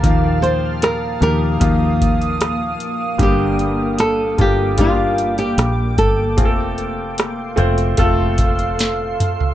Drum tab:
HH |x-x-x-x-x-xxx-x-|x-x-x-x-x-xxx-x-|x-x-x-xxx-xxx-x-|
SD |----r-------r---|----r-------r---|----r-------o---|
T2 |----------------|----------------|--------------o-|
FT |----------------|----------------|---------------o|
BD |o-------o-o-----|o-----o-o-----o-|o-------o-o-----|